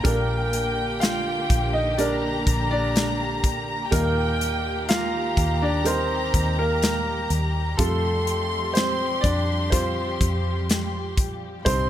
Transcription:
0.00 1.46 A#2 medium
0.00 1.88 G3 medium
0.00 5.81 A#3 medium
0.00 1.04 A#4 medium
0.04 1.46 A#1 medium
0.04 3.88 D3 medium
0.04 0.99 A#3 medium
0.04 1.89 D4 medium
0.04 3.88 G4 medium
0.04 0.11 A4 medium
0.04 1.98 G5 medium
0.04 kick loud
0.04 closed hi-hat medium
0.11 1.92 A#4 medium
0.53 closed hi-hat medium
1.00 1.71 F4 medium
1.00 1.76 F5 medium
1.00 snare loud
1.00 closed hi-hat medium
1.50 2.43 A#1 medium
1.50 kick medium
1.50 closed hi-hat medium
1.73 1.97 D#4 medium
1.73 1.96 D#5 medium
1.97 3.82 G3 medium
1.97 3.82 D4 medium
1.97 2.67 D4 medium
1.97 3.83 A#4 medium
1.97 2.69 D5 medium
1.97 3.92 A#5 medium
1.97 closed hi-hat medium
2.47 3.88 A#1 medium
2.47 kick medium
2.47 closed hi-hat medium
2.71 3.40 D4 medium
2.71 3.40 D5 loud
2.96 snare loud
2.96 closed hi-hat medium
3.44 kick medium
3.44 closed hi-hat medium
3.91 5.33 D#2 loud
3.91 5.33 A#2 medium
3.91 7.75 D#3 medium
3.91 5.75 G3 medium
3.91 4.86 A#3 medium
3.91 5.76 D#4 medium
3.91 7.75 G4 medium
3.91 4.92 A#4 medium
3.91 5.76 A#4 medium
3.91 4.88 G5 loud
3.91 kick loud
3.91 closed hi-hat medium
4.41 closed hi-hat medium
4.88 5.58 F4 medium
4.88 5.64 F5 loud
4.88 7.79 A#5 medium
4.88 snare loud
4.88 closed hi-hat medium
5.37 6.30 D#2 medium
5.37 kick medium
5.37 closed hi-hat medium
5.62 5.84 D4 medium
5.62 5.84 D5 medium
5.84 7.69 G3 medium
5.84 11.62 G3 medium
5.84 6.55 C4 medium
5.84 7.69 D#4 medium
5.84 7.70 A#4 medium
5.84 6.55 C5 medium
5.84 closed hi-hat medium
6.34 7.27 D#2 loud
6.34 kick medium
6.34 closed hi-hat medium
6.59 7.27 A#3 medium
6.59 7.27 A#4 medium
6.82 snare loud
6.82 closed hi-hat medium
7.30 7.76 D#2 medium
7.30 closed hi-hat medium
7.77 9.20 F2 loud
7.77 9.20 C3 medium
7.77 11.63 F3 medium
7.77 9.63 G3 medium
7.77 8.72 A3 medium
7.77 9.63 F4 medium
7.77 11.63 G4 medium
7.77 8.71 A4 medium
7.77 9.63 A4 medium
7.77 11.13 C6 loud
7.77 kick loud
7.77 closed hi-hat medium
8.27 closed hi-hat medium
8.74 9.22 C4 medium
8.74 9.25 C5 medium
8.74 snare loud
8.74 closed hi-hat medium
9.21 10.17 F2 medium
9.21 9.73 D5 medium
9.21 kick medium
9.21 closed hi-hat medium
9.25 9.70 D4 medium
9.70 11.56 G3 medium
9.70 10.66 C4 medium
9.70 11.56 F4 medium
9.70 10.64 C5 medium
9.70 11.57 C5 medium
9.70 kick medium
9.70 closed hi-hat medium
10.21 11.62 F2 medium
10.21 kick medium
10.21 closed hi-hat medium
10.70 snare loud
10.70 closed hi-hat medium
11.17 kick medium
11.17 closed hi-hat medium
11.65 11.90 C2 medium
11.65 11.90 G2 medium
11.65 11.90 C3 medium
11.65 11.90 G3 medium
11.65 11.90 C4 medium
11.65 11.90 D#4 medium
11.65 11.90 G4 medium
11.65 11.90 C5 medium
11.65 11.90 C6 medium
11.65 kick loud
11.65 closed hi-hat medium

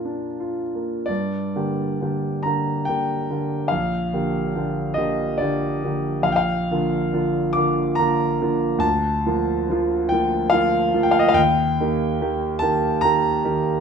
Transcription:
0.00 1.04 A#2 soft
0.00 0.75 A#3 soft
0.00 0.05 D4 soft
0.00 0.40 F4 soft
0.00 0.57 A#4 medium
0.05 0.63 D4 soft
0.40 0.96 F4 soft
0.75 1.08 A#3 soft
1.06 1.54 G2 soft
1.06 2.43 D5 medium
1.56 1.97 D3 soft
1.56 1.97 A#3 soft
1.56 1.98 G4 soft
2.01 2.41 D3 soft
2.01 2.41 A#3 soft
2.01 2.42 G4 soft
2.43 2.83 D3 soft
2.43 2.84 A#3 soft
2.43 2.84 G4 soft
2.43 2.86 A#5 medium
2.85 3.25 D3 soft
2.85 3.25 A#3 soft
2.85 3.69 G5 medium
2.89 3.26 G4 soft
3.30 3.67 D3 soft
3.30 3.67 A#3 soft
3.30 3.67 G4 soft
3.68 4.11 A#1 soft
3.68 4.95 F5 medium
4.13 4.51 D3 soft
4.13 4.51 A#3 soft
4.13 4.51 G4 soft
4.55 4.93 D3 soft
4.55 4.93 A#3 soft
4.55 4.94 G4 soft
4.94 5.36 D3 soft
4.94 5.36 A#3 soft
4.94 5.36 G4 soft
4.94 5.38 D#5 medium
5.38 5.79 D3 soft
5.38 5.79 A#3 soft
5.38 6.25 D5 medium
5.42 5.80 G4 soft
5.84 6.23 D3 soft
5.84 6.23 A#3 soft
5.84 6.23 G4 soft
6.22 6.68 A#1 soft
6.22 6.31 F5 medium
6.32 7.55 F5 medium
6.32 6.39 G5 medium
6.71 7.11 D3 soft
6.71 7.11 A#3 soft
6.71 7.11 F4 soft
7.13 7.52 D3 soft
7.13 7.52 A#3 soft
7.13 7.52 F4 soft
7.53 7.95 D3 soft
7.53 7.97 D6 medium
7.57 7.95 A#3 soft
7.57 7.95 F4 soft
7.95 8.37 D3 soft
7.95 8.37 A#3 soft
7.95 8.82 A#5 medium
7.99 8.38 F4 soft
8.41 8.80 D3 soft
8.41 8.80 A#3 soft
8.41 8.80 F4 soft
8.78 9.23 D2 medium
8.78 10.10 A5 medium
9.26 9.66 F3 soft
9.26 9.66 A#3 soft
9.26 9.66 F4 soft
9.70 10.08 F3 soft
9.70 10.08 A#3 soft
9.70 10.09 F4 soft
10.09 10.49 F3 soft
10.09 10.49 A#3 soft
10.09 10.51 G5 medium
10.13 10.50 F4 soft
10.50 10.90 F3 soft
10.50 10.91 A#3 soft
10.50 11.02 F5 medium
10.54 10.91 F4 medium
10.94 11.33 F3 soft
10.94 11.33 A#3 soft
10.94 11.33 F4 soft
11.03 11.12 G5 medium
11.11 11.20 F5 medium
11.19 11.28 D#5 medium
11.29 11.37 F5 medium
11.34 11.76 D#2 medium
11.34 12.61 G5 loud
11.80 12.17 D#3 soft
11.80 12.18 A#3 soft
11.80 12.18 G4 soft
12.21 12.59 D#3 soft
12.21 12.59 A#3 soft
12.21 12.59 G4 soft
12.59 13.00 D#3 soft
12.59 13.00 A#3 soft
12.59 13.00 G4 soft
12.59 13.02 A5 medium
13.01 13.41 D#3 soft
13.01 13.41 A#3 medium
13.01 13.41 G4 medium
13.01 13.80 A#5 loud
13.44 13.80 D#3 soft
13.44 13.80 A#3 soft
13.44 13.80 G4 medium

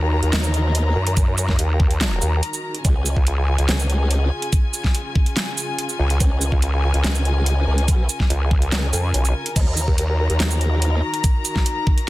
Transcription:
0.00 0.21 D#2 loud
0.00 2.81 D#3 medium
0.00 2.81 D#4 medium
0.00 2.81 F#4 medium
0.00 2.81 A#4 medium
0.00 2.81 A#5 medium
0.23 0.31 D#2 loud
0.23 closed hi-hat medium
0.33 0.94 D#2 loud
0.33 snare loud
0.33 closed hi-hat medium
0.44 shaker medium
0.54 closed hi-hat medium
0.75 closed hi-hat medium
0.96 1.57 F#2 loud
1.07 closed hi-hat medium
1.17 kick loud
1.17 closed hi-hat medium
1.17 shaker medium
1.38 closed hi-hat medium
1.38 shaker medium
1.49 kick medium
1.49 snare soft
1.59 2.20 D#2 loud
1.59 closed hi-hat medium
1.80 kick loud
1.91 closed hi-hat medium
2.01 snare loud
2.01 closed hi-hat medium
2.22 2.41 D#2 medium
2.22 closed hi-hat soft
2.22 shaker medium
2.43 closed hi-hat medium
2.54 shaker medium
2.75 closed hi-hat medium
2.85 3.15 C#2 medium
2.85 9.52 C#3 medium
2.85 9.52 C#4 medium
2.85 9.52 F4 medium
2.85 6.17 G#4 medium
2.85 9.52 G#5 medium
2.85 kick loud
2.85 closed hi-hat medium
2.85 shaker soft
3.06 closed hi-hat medium
3.06 shaker medium
3.16 3.57 C#2 loud
3.16 kick medium
3.27 closed hi-hat medium
3.58 3.67 C#2 loud
3.58 closed hi-hat soft
3.69 4.30 C#2 loud
3.69 snare loud
3.69 closed hi-hat medium
3.79 shaker medium
3.90 closed hi-hat medium
4.11 closed hi-hat medium
4.42 closed hi-hat medium
4.53 kick loud
4.53 closed hi-hat medium
4.53 shaker medium
4.74 closed hi-hat soft
4.74 shaker medium
4.84 kick medium
4.84 snare soft
4.95 closed hi-hat medium
5.15 kick loud
5.26 closed hi-hat soft
5.37 snare loud
5.37 closed hi-hat medium
5.58 closed hi-hat soft
5.58 shaker medium
5.79 closed hi-hat medium
5.89 shaker medium
5.99 6.19 C#2 loud
6.10 closed hi-hat medium
6.20 6.50 C#2 loud
6.20 12.09 A#4 medium
6.20 kick loud
6.20 closed hi-hat medium
6.20 shaker medium
6.41 closed hi-hat medium
6.41 shaker medium
6.52 6.92 C#2 loud
6.52 kick medium
6.62 closed hi-hat medium
6.94 7.03 C#2 loud
6.94 closed hi-hat medium
7.04 7.66 C#2 loud
7.04 snare loud
7.04 closed hi-hat medium
7.15 shaker medium
7.25 closed hi-hat soft
7.46 closed hi-hat medium
7.67 7.87 C#2 loud
7.78 closed hi-hat medium
7.88 8.08 B1 loud
7.88 kick loud
7.88 closed hi-hat medium
7.88 shaker medium
8.09 closed hi-hat medium
8.09 shaker medium
8.20 kick medium
8.20 snare soft
8.30 8.70 C#2 loud
8.30 closed hi-hat medium
8.51 kick loud
8.62 closed hi-hat medium
8.72 8.91 C#2 medium
8.72 snare loud
8.72 closed hi-hat medium
8.93 9.12 F2 loud
8.93 closed hi-hat medium
8.93 shaker medium
9.14 9.33 B1 loud
9.14 closed hi-hat medium
9.25 closed hi-hat soft
9.25 shaker medium
9.46 closed hi-hat medium
9.56 9.86 D#2 loud
9.56 12.09 D#3 medium
9.56 12.09 D#4 medium
9.56 12.09 F#4 medium
9.56 12.09 A#5 medium
9.56 kick loud
9.56 closed hi-hat medium
9.56 crash medium
9.56 shaker medium
9.77 closed hi-hat medium
9.77 shaker medium
9.88 10.28 D#2 loud
9.88 kick medium
9.98 closed hi-hat medium
10.30 10.38 D#2 loud
10.30 closed hi-hat medium
10.40 11.01 D#2 medium
10.40 snare loud
10.40 closed hi-hat medium
10.51 shaker medium
10.61 closed hi-hat medium
10.82 closed hi-hat medium
11.14 closed hi-hat medium
11.24 kick loud
11.24 closed hi-hat medium
11.24 shaker medium
11.45 closed hi-hat medium
11.45 shaker medium
11.56 kick medium
11.56 snare soft
11.66 closed hi-hat medium
11.87 kick loud
11.98 closed hi-hat medium

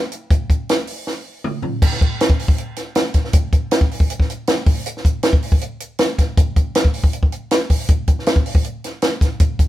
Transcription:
0.12 closed hi-hat medium
0.30 kick loud
0.30 closed hi-hat medium
0.50 kick medium
0.50 closed hi-hat medium
0.69 snare loud
0.69 closed hi-hat medium
0.87 open hi-hat medium
1.07 snare medium
1.44 mid tom medium
1.62 floor tom medium
1.82 kick loud
1.82 crash loud
1.92 snare soft
2.01 kick medium
2.01 closed hi-hat medium
2.20 snare loud
2.20 closed hi-hat loud
2.30 kick medium
2.39 open hi-hat medium
2.48 kick medium
2.58 closed hi-hat medium
2.76 snare soft
2.76 closed hi-hat medium
2.95 snare loud
2.95 closed hi-hat medium
3.14 kick medium
3.14 snare soft
3.14 closed hi-hat medium
3.24 snare soft
3.33 kick loud
3.33 closed hi-hat loud
3.53 kick medium
3.53 closed hi-hat medium
3.71 snare loud
3.71 closed hi-hat loud
3.81 kick medium
3.91 open hi-hat medium
4.00 kick medium
4.10 closed hi-hat medium
4.20 kick medium
4.20 snare soft
4.30 closed hi-hat medium
4.47 snare loud
4.47 closed hi-hat medium
4.66 kick loud
4.66 open hi-hat medium
4.86 closed hi-hat medium
4.97 snare soft
5.05 kick medium
5.05 closed hi-hat medium
5.23 snare loud
5.23 closed hi-hat medium
5.33 kick medium
5.42 open hi-hat medium
5.52 kick medium
5.61 closed hi-hat medium
5.80 closed hi-hat medium
5.99 snare loud
5.99 closed hi-hat medium
6.18 kick medium
6.18 snare soft
6.18 closed hi-hat medium
6.37 kick loud
6.37 closed hi-hat loud
6.56 kick medium
6.56 closed hi-hat medium
6.75 snare loud
6.75 closed hi-hat loud
6.85 kick medium
6.94 open hi-hat medium
7.04 kick medium
7.13 closed hi-hat medium
7.23 kick medium
7.32 closed hi-hat medium
7.51 snare loud
7.51 closed hi-hat medium
7.70 kick medium
7.70 open hi-hat medium
7.88 kick loud
7.88 closed hi-hat medium
8.07 kick medium
8.07 closed hi-hat medium
8.19 snare soft
8.26 snare loud
8.26 closed hi-hat medium
8.36 kick medium
8.46 open hi-hat medium
8.55 kick medium
8.64 closed hi-hat medium
8.84 snare soft
8.84 closed hi-hat medium
9.02 snare loud
9.02 closed hi-hat medium
9.21 kick medium
9.21 snare soft
9.21 closed hi-hat medium
9.40 kick loud
9.40 closed hi-hat medium
9.59 kick medium
9.59 closed hi-hat medium

